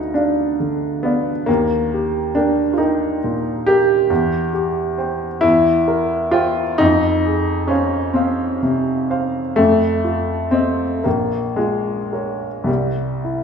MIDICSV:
0, 0, Header, 1, 2, 480
1, 0, Start_track
1, 0, Key_signature, -3, "major"
1, 0, Tempo, 878477
1, 808, Time_signature, 6, 3, 24, 8
1, 2240, Key_signature, -4, "minor"
1, 2720, Tempo, 911854
1, 4640, Tempo, 958466
1, 5600, Tempo, 1036269
1, 6080, Tempo, 1111111
1, 6882, End_track
2, 0, Start_track
2, 0, Title_t, "Grand piano"
2, 0, Program_c, 0, 0
2, 0, Control_c, 0, 64, 127
2, 0, Note_on_c, 0, 38, 60
2, 0, Note_on_c, 0, 59, 76
2, 0, Note_on_c, 0, 63, 68
2, 0, Note_on_c, 0, 68, 46
2, 0, Note_on_c, 0, 74, 41
2, 0, Note_on_c, 0, 77, 45
2, 62, Note_off_c, 0, 74, 0
2, 63, Note_off_c, 0, 77, 0
2, 77, Note_on_c, 0, 62, 65
2, 78, Note_off_c, 0, 63, 0
2, 85, Note_on_c, 0, 74, 43
2, 87, Note_on_c, 0, 77, 46
2, 305, Note_off_c, 0, 74, 0
2, 305, Note_off_c, 0, 77, 0
2, 328, Note_on_c, 0, 50, 52
2, 563, Note_off_c, 0, 59, 0
2, 563, Note_off_c, 0, 62, 0
2, 563, Note_on_c, 0, 59, 79
2, 573, Note_on_c, 0, 74, 45
2, 576, Note_on_c, 0, 77, 50
2, 712, Note_off_c, 0, 50, 0
2, 789, Note_off_c, 0, 38, 0
2, 789, Note_off_c, 0, 74, 0
2, 791, Note_off_c, 0, 77, 0
2, 799, Note_on_c, 0, 58, 89
2, 806, Note_off_c, 0, 59, 0
2, 811, Note_on_c, 0, 39, 62
2, 818, Control_c, 0, 64, 0
2, 822, Note_off_c, 0, 68, 0
2, 902, Control_c, 0, 64, 127
2, 1056, Note_on_c, 0, 67, 52
2, 1283, Note_off_c, 0, 58, 0
2, 1283, Note_on_c, 0, 62, 75
2, 1292, Note_on_c, 0, 70, 49
2, 1293, Note_on_c, 0, 79, 46
2, 1433, Note_off_c, 0, 67, 0
2, 1485, Note_off_c, 0, 62, 0
2, 1493, Note_on_c, 0, 65, 50
2, 1504, Note_off_c, 0, 70, 0
2, 1505, Note_off_c, 0, 79, 0
2, 1517, Note_on_c, 0, 63, 73
2, 1527, Note_off_c, 0, 65, 0
2, 1527, Note_on_c, 0, 70, 47
2, 1530, Note_on_c, 0, 79, 48
2, 1744, Note_off_c, 0, 70, 0
2, 1745, Note_off_c, 0, 79, 0
2, 1771, Note_on_c, 0, 46, 53
2, 2002, Note_off_c, 0, 63, 0
2, 2002, Note_on_c, 0, 67, 95
2, 2011, Note_on_c, 0, 70, 52
2, 2015, Note_on_c, 0, 79, 58
2, 2151, Note_off_c, 0, 46, 0
2, 2221, Note_off_c, 0, 39, 0
2, 2221, Note_off_c, 0, 70, 0
2, 2223, Note_off_c, 0, 79, 0
2, 2240, Note_on_c, 0, 40, 67
2, 2248, Control_c, 0, 64, 0
2, 2349, Control_c, 0, 64, 127
2, 2469, Note_off_c, 0, 67, 0
2, 2477, Note_on_c, 0, 67, 59
2, 2722, Note_on_c, 0, 72, 50
2, 2724, Note_on_c, 0, 79, 49
2, 2863, Note_off_c, 0, 67, 0
2, 2937, Note_off_c, 0, 40, 0
2, 2939, Note_off_c, 0, 72, 0
2, 2940, Note_off_c, 0, 79, 0
2, 2947, Note_on_c, 0, 64, 97
2, 2956, Note_on_c, 0, 40, 68
2, 2966, Control_c, 0, 64, 0
2, 3068, Control_c, 0, 64, 127
2, 3194, Note_on_c, 0, 70, 59
2, 3423, Note_on_c, 0, 65, 97
2, 3430, Note_on_c, 0, 72, 55
2, 3433, Note_off_c, 0, 64, 0
2, 3434, Note_on_c, 0, 79, 60
2, 3580, Note_off_c, 0, 70, 0
2, 3654, Note_off_c, 0, 72, 0
2, 3655, Note_off_c, 0, 79, 0
2, 3656, Note_off_c, 0, 40, 0
2, 3669, Note_on_c, 0, 63, 102
2, 3671, Note_off_c, 0, 65, 0
2, 3680, Note_on_c, 0, 41, 75
2, 3689, Control_c, 0, 64, 0
2, 3779, Control_c, 0, 64, 127
2, 3919, Note_on_c, 0, 68, 56
2, 4140, Note_on_c, 0, 61, 84
2, 4149, Note_on_c, 0, 72, 52
2, 4150, Note_off_c, 0, 63, 0
2, 4154, Note_on_c, 0, 77, 51
2, 4299, Note_off_c, 0, 68, 0
2, 4370, Note_off_c, 0, 72, 0
2, 4372, Note_off_c, 0, 77, 0
2, 4382, Note_on_c, 0, 60, 73
2, 4386, Note_off_c, 0, 61, 0
2, 4391, Note_on_c, 0, 72, 56
2, 4396, Note_on_c, 0, 77, 58
2, 4616, Note_off_c, 0, 72, 0
2, 4618, Note_off_c, 0, 77, 0
2, 4632, Note_off_c, 0, 60, 0
2, 4639, Note_on_c, 0, 48, 56
2, 4880, Note_on_c, 0, 72, 55
2, 4882, Note_on_c, 0, 77, 55
2, 5023, Note_off_c, 0, 48, 0
2, 5099, Note_off_c, 0, 41, 0
2, 5099, Note_off_c, 0, 72, 0
2, 5100, Note_off_c, 0, 77, 0
2, 5108, Note_on_c, 0, 57, 98
2, 5117, Note_on_c, 0, 41, 65
2, 5126, Control_c, 0, 64, 0
2, 5220, Control_c, 0, 64, 127
2, 5350, Note_on_c, 0, 65, 51
2, 5585, Note_on_c, 0, 60, 80
2, 5593, Note_off_c, 0, 57, 0
2, 5593, Note_on_c, 0, 72, 45
2, 5598, Note_on_c, 0, 75, 54
2, 5736, Note_off_c, 0, 65, 0
2, 5812, Note_off_c, 0, 72, 0
2, 5814, Note_off_c, 0, 41, 0
2, 5814, Note_off_c, 0, 75, 0
2, 5826, Note_off_c, 0, 60, 0
2, 5830, Note_on_c, 0, 58, 79
2, 5838, Note_on_c, 0, 34, 64
2, 5844, Control_c, 0, 64, 0
2, 5949, Control_c, 0, 64, 127
2, 6073, Note_on_c, 0, 56, 76
2, 6078, Note_off_c, 0, 58, 0
2, 6083, Note_on_c, 0, 65, 50
2, 6317, Note_on_c, 0, 70, 43
2, 6322, Note_on_c, 0, 73, 44
2, 6460, Note_off_c, 0, 65, 0
2, 6538, Note_off_c, 0, 70, 0
2, 6538, Note_on_c, 0, 36, 60
2, 6539, Note_off_c, 0, 34, 0
2, 6540, Note_off_c, 0, 73, 0
2, 6550, Note_on_c, 0, 55, 67
2, 6551, Note_off_c, 0, 56, 0
2, 6563, Control_c, 0, 64, 0
2, 6647, Control_c, 0, 64, 127
2, 6799, Note_on_c, 0, 64, 43
2, 6882, Note_off_c, 0, 36, 0
2, 6882, Note_off_c, 0, 55, 0
2, 6882, Note_off_c, 0, 64, 0
2, 6882, End_track
0, 0, End_of_file